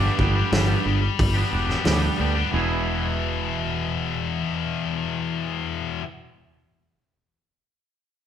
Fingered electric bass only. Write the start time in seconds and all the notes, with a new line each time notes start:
0.19 G1
0.52 G1
0.85 G1
1.20 G1
1.53 E1
1.86 D2
2.20 D2
2.54 E1